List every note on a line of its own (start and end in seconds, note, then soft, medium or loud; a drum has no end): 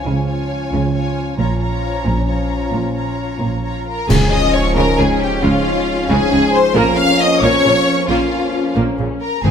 0.00 1.34 F3 soft
0.00 1.34 C#4 soft
0.00 0.27 F4 soft
0.00 0.27 C#5 soft
0.00 0.26 G#5 soft
0.07 0.62 C#2 soft
0.07 0.62 C#3 medium
0.28 0.93 F4 soft
0.28 0.93 C#5 soft
0.28 0.93 G#5 soft
0.73 1.28 C#2 medium
0.73 1.29 C#3 medium
0.94 1.37 F4 soft
0.94 1.38 C#5 soft
0.94 1.38 G#5 soft
1.37 1.95 A#1 medium
1.37 1.96 A#2 medium
1.37 3.83 F3 soft
1.37 3.82 C#4 soft
1.37 1.60 F4 soft
1.37 1.60 C#5 soft
1.37 1.59 A#5 soft
1.60 2.27 F4 soft
1.60 2.27 C#5 soft
1.60 2.26 A#5 soft
2.06 2.63 A#1 medium
2.06 2.63 A#2 medium
2.27 2.95 F4 soft
2.27 2.94 C#5 soft
2.27 2.94 A#5 soft
2.74 3.31 A#1 medium
2.74 3.31 A#2 soft
2.95 3.63 F4 soft
2.95 3.62 C#5 soft
2.95 3.63 A#5 soft
3.42 3.99 A#1 soft
3.42 3.99 A#2 soft
3.63 4.09 F4 soft
3.63 3.86 C#5 soft
3.63 3.87 A#5 soft
3.87 4.08 A#4 medium
3.87 4.08 A#5 medium
4.08 4.18 C#2 medium
4.08 5.40 G#2 medium
4.08 4.73 C#3 medium
4.08 4.18 C#3 medium
4.08 5.40 F3 medium
4.08 4.30 G#3 medium
4.08 5.39 G#3 medium
4.08 6.71 C#4 medium
4.08 5.39 C#4 medium
4.08 4.31 G#4 medium
4.08 4.32 G#5 medium
4.08 concert bass drum medium
4.08 crash medium
4.31 4.54 D#5 loud
4.31 4.54 D#6 medium
4.53 4.76 C#5 medium
4.53 4.77 C#6 medium
4.75 4.84 C#2 medium
4.75 4.85 C#3 medium
4.75 4.97 G#3 medium
4.75 4.98 A#4 medium
4.75 4.99 A#5 medium
4.98 5.07 C#2 medium
4.98 5.06 C#3 medium
4.98 5.07 C#3 medium
4.98 5.21 G#4 medium
4.98 5.22 G#5 medium
5.21 5.43 G4 medium
5.21 5.30 G5 medium
5.42 5.52 C#2 medium
5.42 6.07 G#2 medium
5.42 5.51 C#3 medium
5.42 6.08 F3 medium
5.42 6.08 G#3 medium
5.42 5.64 G#3 medium
5.42 6.08 C#4 medium
5.42 6.10 F4 medium
5.42 6.08 F5 medium
6.09 6.18 C#2 medium
6.09 6.74 G#2 medium
6.09 6.18 C#3 medium
6.09 6.74 F3 medium
6.09 6.30 G#3 medium
6.09 6.74 G#3 medium
6.09 6.73 C#4 medium
6.09 6.52 G#4 loud
6.09 6.54 G#5 medium
6.32 6.40 C#2 medium
6.32 6.40 C#3 medium
6.54 6.75 C5 loud
6.54 6.75 C6 medium
6.74 6.84 A#1 medium
6.74 7.40 F2 medium
6.74 6.83 A#2 medium
6.74 7.40 F3 medium
6.74 7.41 A#3 medium
6.74 6.96 A#3 medium
6.74 7.40 C#4 medium
6.74 9.19 C#4 medium
6.74 6.97 A#4 medium
6.74 6.98 A#5 medium
6.97 7.19 F5 loud
6.97 7.19 F6 medium
7.20 7.42 D#5 loud
7.20 7.42 D#6 medium
7.41 7.50 A#1 medium
7.41 8.07 F2 medium
7.41 7.51 A#2 medium
7.41 8.07 F3 medium
7.41 7.62 A#3 medium
7.41 8.06 A#3 medium
7.41 8.07 C#4 medium
7.41 8.07 C#5 loud
7.41 8.08 C#6 medium
7.64 7.72 A#1 medium
7.64 7.73 A#2 medium
7.64 7.72 C#3 medium
8.07 8.17 A#1 medium
8.07 9.18 F2 medium
8.07 8.18 A#2 medium
8.07 9.18 F3 medium
8.07 9.18 A#3 medium
8.07 8.29 A#3 medium
8.07 9.18 C#4 medium
8.07 8.74 F4 medium
8.07 8.74 F5 medium
8.76 8.84 A#1 medium
8.76 8.84 A#2 medium
8.76 8.96 A#3 medium
8.99 9.07 A#1 soft
8.99 9.08 A#2 soft
8.99 9.07 C#3 soft
9.21 9.42 A#4 medium
9.21 9.42 A#5 medium
9.43 9.51 G#1 medium
9.43 9.51 G#2 medium
9.43 9.51 C4 medium
9.43 9.51 D#4 medium
9.43 9.51 G#4 medium
9.43 9.51 G#5 medium